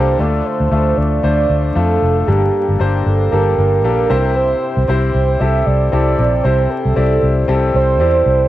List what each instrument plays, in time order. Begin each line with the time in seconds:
Already playing: fingered electric bass C2, grand piano G2 A#3 D4 G4 A4 A#4 C5, soft synth lead C5
0.19 fingered electric bass D2, grand piano D3 A3 D4 F4 A4, soft synth lead D5
0.46 soft synth lead C5
0.60 fingered electric bass D2
0.71 fingered electric bass D2, grand piano A3 D4 F4 A4
0.97 fingered electric bass D2, soft synth lead D5
1.23 fingered electric bass D2, grand piano A3 D4 F4 C5, soft synth lead D5
1.49 fingered electric bass D2
1.75 fingered electric bass F2, grand piano A3 D4 F4 A4, soft synth lead A4
2.02 fingered electric bass F1
2.27 fingered electric bass G1, grand piano G2 A#3 D4 G4 A4, soft synth lead G4
2.69 fingered electric bass G1
2.79 fingered electric bass G1, grand piano A#3 D4 G4 C5
3.05 fingered electric bass G1, soft synth lead A4
3.31 fingered electric bass G1, grand piano A#3 D4 G4 A4, soft synth lead A#4
3.57 fingered electric bass G1, soft synth lead A#4
3.84 fingered electric bass A#1, grand piano A#3 D4 G4 A4
4.09 fingered electric bass C2, grand piano C3 C4 E4 G4 C5
4.36 soft synth lead C5
4.61 soft synth lead C5
4.77 fingered electric bass C2
4.88 fingered electric bass C2, grand piano C4 E4 G4 C5
5.14 fingered electric bass C2
5.39 fingered electric bass C2, grand piano C4 E4 G4 A4, soft synth lead E5
5.66 fingered electric bass C2, soft synth lead D5
5.92 fingered electric bass C2, grand piano C4 E4 G4 A4, soft synth lead D5
6.18 fingered electric bass A#1, grand piano C3
6.43 fingered electric bass C2, grand piano C4 E4 G4 C5, soft synth lead C5
6.70 soft synth lead A4
6.85 fingered electric bass C2
6.96 fingered electric bass C2, grand piano C4 E4 G4 D5
7.22 fingered electric bass C2
7.48 fingered electric bass C2, grand piano C4 E4 G4 A4
7.74 fingered electric bass C2, soft synth lead C5
8.00 fingered electric bass E2, grand piano C4 E4 G4 D5
8.26 fingered electric bass C2